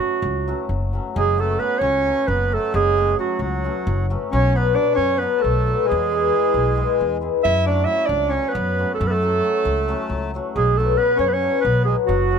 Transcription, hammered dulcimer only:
0.00 0.46 F#3 soft
0.00 0.14 A3 soft
0.00 0.14 C#4 soft
0.00 0.15 F#4 soft
0.48 0.92 F#3 medium
0.48 0.61 A3 medium
0.48 0.61 C#4 medium
0.48 0.61 F#4 medium
0.93 1.21 F#3 medium
0.93 1.07 A3 medium
0.93 1.08 C#4 medium
0.93 1.07 F#4 medium
1.38 1.58 F#3 medium
1.38 1.52 A3 medium
1.38 1.52 C#4 medium
1.38 1.52 F#4 medium
1.59 2.04 F#3 medium
1.59 1.73 A3 medium
1.59 1.74 C#4 soft
1.59 1.74 F#4 medium
2.06 2.50 F#3 medium
2.06 2.19 A3 medium
2.06 2.19 C#4 medium
2.06 2.20 F#4 medium
2.51 2.96 F#3 soft
2.51 2.65 A3 medium
2.51 2.65 C#4 medium
2.51 2.66 F#4 medium
2.97 3.18 F#3 medium
2.97 3.10 A3 medium
2.97 3.10 C#4 medium
2.97 3.11 F#4 medium
3.19 3.63 F#3 medium
3.19 3.32 A3 soft
3.19 3.32 C#4 soft
3.19 3.32 F#4 medium
3.64 4.09 F#3 medium
3.64 3.77 A3 medium
3.64 3.78 C#4 medium
3.64 3.78 F#4 medium
4.10 4.37 F#3 medium
4.10 4.23 A3 medium
4.10 4.23 C#4 medium
4.10 4.24 F#4 medium
4.55 4.75 F#3 medium
4.55 4.68 B3 medium
4.55 4.69 D4 medium
4.55 4.69 F#4 medium
4.76 5.20 F#3 medium
4.76 4.89 B3 medium
4.76 4.89 D4 soft
4.76 4.90 F#4 medium
5.21 5.65 F#3 medium
5.21 5.34 B3 medium
5.21 5.35 D4 medium
5.21 5.35 F#4 medium
5.66 5.94 F#3 medium
5.66 5.80 B3 medium
5.66 5.80 D4 medium
5.66 5.81 F#4 medium
6.11 6.31 G#3 medium
6.11 6.25 B3 medium
6.11 6.25 E4 medium
6.11 6.25 G#4 medium
6.32 6.75 G#3 soft
6.32 6.45 B3 soft
6.32 6.46 E4 medium
6.32 6.46 G#4 medium
6.76 7.20 G#3 medium
6.76 6.90 B3 medium
6.76 6.90 E4 medium
6.76 6.91 G#4 medium
7.21 7.50 G#3 medium
7.21 7.35 B3 medium
7.21 7.35 E4 medium
7.21 7.36 G#4 medium
7.66 7.84 F#3 medium
7.66 7.79 A3 medium
7.66 7.79 C#4 medium
7.66 7.80 F#4 medium
7.85 8.30 F#3 medium
7.85 8.00 A3 medium
7.85 8.00 C#4 soft
7.85 8.00 F#4 medium
8.31 8.78 F#3 medium
8.31 8.45 A3 medium
8.31 8.46 C#4 medium
8.31 8.46 F#4 medium
8.79 9.21 F#3 medium
8.79 8.92 A3 medium
8.79 8.92 C#4 medium
8.79 8.92 F#4 medium
9.22 9.41 F#3 medium
9.22 9.35 A3 medium
9.22 9.36 C#4 medium
9.22 9.36 F#4 medium
9.42 9.87 F#3 medium
9.42 9.56 A3 medium
9.42 9.56 C#4 soft
9.42 9.57 F#4 medium
9.88 10.33 F#3 medium
9.88 10.01 A3 medium
9.88 10.01 C#4 medium
9.88 10.02 F#4 medium
10.34 10.60 F#3 medium
10.34 10.47 A3 medium
10.34 10.47 C#4 medium
10.34 10.48 F#4 medium
10.79 10.96 F#3 medium
10.79 10.91 B3 medium
10.79 10.91 D4 medium
10.79 10.91 F#4 medium
10.97 11.41 F#3 medium
10.97 11.10 B3 medium
10.97 11.11 D4 soft
10.97 11.11 F#4 medium
11.42 11.85 F#3 medium
11.42 11.56 B3 medium
11.42 11.56 D4 medium
11.42 11.56 F#4 medium
11.87 12.14 F#3 medium
11.87 12.00 B3 soft
11.87 12.01 D4 soft
11.87 12.01 F#4 medium
12.31 12.39 F#3 medium
12.31 12.39 A3 medium
12.31 12.39 C#4 medium
12.31 12.39 F#4 medium

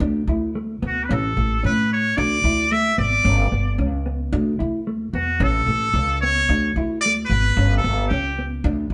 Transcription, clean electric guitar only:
0.01 0.21 D4 loud
0.29 0.49 E4 medium
0.55 0.75 A3 medium
0.82 1.02 B3 medium
1.09 1.29 C#4 medium
1.37 1.57 A3 medium
1.63 1.83 C#4 medium
2.17 2.37 D4 loud
2.45 2.64 E4 medium
2.72 2.91 A3 medium
2.98 3.18 B3 medium
3.24 3.44 C#4 medium
3.52 3.72 B3 medium
3.79 3.99 C#4 medium
4.06 4.26 B3 medium
4.33 4.53 D4 loud
4.59 4.79 E4 medium
4.87 5.07 A3 medium
5.15 5.34 B3 medium
5.41 5.61 C#4 medium
5.68 5.88 A3 medium
5.96 muted clean electric guitar stroke medium
6.23 6.42 B3 medium
6.50 6.70 D4 loud
6.78 6.97 E4 medium
7.06 7.24 A3 medium
7.31 7.50 B3 medium
7.59 7.78 C#4 loud
7.84 8.04 B3 medium
8.11 8.31 C#4 medium
8.39 8.58 B3 medium
8.65 8.85 D4 loud

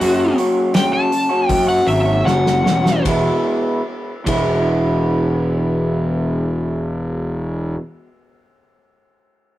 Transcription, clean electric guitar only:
0.01 0.73 F#2 medium
0.01 0.73 C#3 medium
0.01 0.36 F#3 medium
0.01 0.37 A#3 medium
0.01 0.37 C#4 medium
0.01 0.38 F#4 medium
0.37 0.73 F#3 medium
0.37 0.74 A#3 medium
0.37 0.74 C#4 medium
0.37 0.74 F#4 medium
0.74 1.30 F#2 medium
0.74 1.30 C#3 medium
0.74 0.93 F#3 medium
0.74 0.92 A#3 medium
0.74 0.92 C#4 medium
0.74 0.91 F#4 medium
0.92 1.10 F#3 soft
0.92 1.11 A#3 medium
0.92 1.11 C#4 medium
0.92 1.11 F#4 medium
1.11 muted clean electric guitar stroke soft
1.29 1.68 F#3 soft
1.29 1.67 A#3 medium
1.29 1.66 C#4 medium
1.29 1.66 F#4 medium
1.67 1.84 F#3 medium
1.67 1.85 A#3 medium
1.67 1.86 C#4 medium
1.67 1.87 F#4 medium
1.86 2.06 F#3 medium
1.86 2.05 A#3 medium
1.86 2.04 C#4 medium
1.86 2.04 F#4 medium
2.05 2.23 F#3 soft
2.05 2.24 A#3 medium
2.05 2.24 C#4 soft
2.05 2.25 F#4 medium
2.24 3.02 F#2 medium
2.24 3.02 C#3 medium
2.24 2.63 F#3 medium
2.24 2.63 A#3 medium
2.24 2.64 C#4 medium
2.24 2.64 F#4 medium
2.64 2.84 F#3 medium
2.64 2.84 A#3 medium
2.64 2.83 C#4 medium
2.64 2.82 F#4 medium
2.84 3.03 F#3 soft
2.84 3.03 A#3 medium
2.84 3.02 C#4 medium
2.84 3.02 F#4 medium
3.03 3.81 E2 medium
3.03 3.81 B2 medium
3.03 3.81 E3 medium
3.03 3.81 G#3 medium
3.03 3.81 B3 medium
3.08 3.81 E4 medium
4.24 7.77 E2 medium
4.24 7.77 B2 medium
4.24 7.78 E3 medium
4.24 7.78 G#3 medium
4.24 7.78 B3 medium
4.24 7.79 E4 medium

